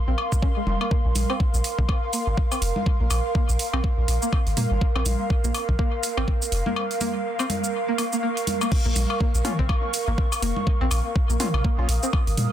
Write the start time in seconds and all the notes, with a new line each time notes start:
Already playing: A#4 F5 C6
0.08 A#1 C4
0.18 cowbell
0.32 kick, cabasa
0.42 C#4, kick
0.57 G#3
0.67 F1, high conga
0.81 A#3, cowbell
0.91 A#3, kick
1.05 A#1
1.15 A#1, open hi-hat, high conga, cabasa
1.30 C4, cowbell
1.40 kick
1.54 A#1, cabasa
1.64 open hi-hat
1.78 A#1 A#3, kick
1.89 kick, cowbell
2.13 A#3, open hi-hat, cabasa
2.27 G#1
2.37 kick
2.52 C4, open hi-hat, cowbell, cabasa
2.62 F1, open hi-hat
2.76 high conga
2.86 kick
3.00 A#1 A#3
3.10 A#1, open hi-hat, cowbell, cabasa
3.35 A#3, kick
3.49 A#1, cabasa
3.59 open hi-hat
3.73 A#1 C4, cowbell
3.84 kick
3.98 A#1
4.08 A#1, open hi-hat
4.22 A#3, cabasa
4.33 kick, cowbell
4.47 G#1, open hi-hat
4.57 A#2 A#3, open hi-hat, high conga
4.71 G#1
4.81 kick
4.95 A#1 C4, cowbell
5.06 A#1, open hi-hat, high conga, cabasa
5.30 kick
5.44 A#1 A#3, cabasa
5.54 open hi-hat, cowbell
5.69 A#1, kick
5.79 A#3, kick
6.03 open hi-hat, cabasa
6.17 G#1 C4, cowbell
6.28 kick
6.42 open hi-hat, cabasa
6.52 F1, open hi-hat
6.66 A#3, high conga
6.76 cowbell
6.91 open hi-hat
7.01 A#3, open hi-hat, high conga, cabasa
7.39 C4, cowbell, cabasa
7.50 open hi-hat, high conga
7.64 cabasa
7.68 C#6
7.88 A#3
7.98 A#3, open hi-hat, cowbell
8.13 A#3, cabasa
8.23 A#3
8.37 open hi-hat
8.47 open hi-hat, high conga
8.61 A#3, cowbell, cabasa
8.72 kick, crash
8.86 A#1 A#3
8.96 A#1, open hi-hat, high conga, cabasa
9.10 cowbell
9.20 A#3, kick
9.34 A#1, cabasa
9.45 A#3 C#4 F4, mid tom, open hi-hat
9.59 A#1 C4, kick
9.69 kick, cowbell
9.94 open hi-hat, cabasa
10.08 G#1 A#3
10.18 kick
10.32 open hi-hat, cowbell, cabasa
10.42 F1 A#3, open hi-hat
10.56 high conga
10.67 kick
10.81 A#1 C4
10.91 A#1, open hi-hat, cowbell, cabasa
11.16 kick
11.30 A#1 A#3, cabasa
11.40 A#3 C#4 F4, mid tom, open hi-hat
11.54 A#1, cowbell
11.58 D#6
11.64 A#3, kick
11.78 A#1 A#3 C#4 F4
11.89 A#1, open hi-hat
12.03 C4, cabasa
12.13 kick, cowbell
12.27 G#1, open hi-hat
12.37 A#2, open hi-hat, high conga